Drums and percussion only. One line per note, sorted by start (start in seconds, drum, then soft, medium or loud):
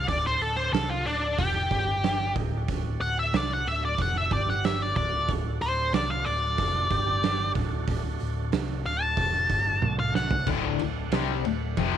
0.08 kick loud
0.08 open hi-hat medium
0.41 open hi-hat medium
0.74 snare loud
0.74 open hi-hat medium
1.07 open hi-hat medium
1.39 kick loud
1.39 open hi-hat medium
1.71 kick loud
1.71 open hi-hat medium
2.03 snare loud
2.03 open hi-hat medium
2.36 kick loud
2.36 open hi-hat medium
2.68 kick loud
2.68 open hi-hat medium
3.01 open hi-hat soft
3.33 snare loud
3.33 open hi-hat medium
3.66 open hi-hat medium
3.98 kick loud
3.98 open hi-hat medium
4.31 kick loud
4.31 open hi-hat soft
4.49 snare soft
4.64 snare loud
4.64 open hi-hat medium
4.96 kick loud
4.96 open hi-hat medium
5.29 kick loud
5.29 open hi-hat medium
5.61 open hi-hat medium
5.93 snare loud
5.93 open hi-hat medium
6.26 open hi-hat medium
6.58 kick loud
6.58 open hi-hat medium
6.91 kick loud
6.91 open hi-hat medium
7.23 snare loud
7.23 open hi-hat medium
7.55 kick loud
7.55 open hi-hat medium
7.88 kick loud
7.88 open hi-hat medium
8.20 open hi-hat medium
8.52 snare loud
8.52 open hi-hat medium
8.85 open hi-hat medium
9.17 kick loud
9.17 open hi-hat medium
9.50 kick medium
9.50 open hi-hat medium
9.82 high tom medium
10.15 snare medium
10.31 floor tom medium
10.47 kick loud
10.47 crash loud
10.79 ride medium
11.12 snare loud
11.12 ride medium
11.45 ride medium
11.77 kick loud
11.77 ride medium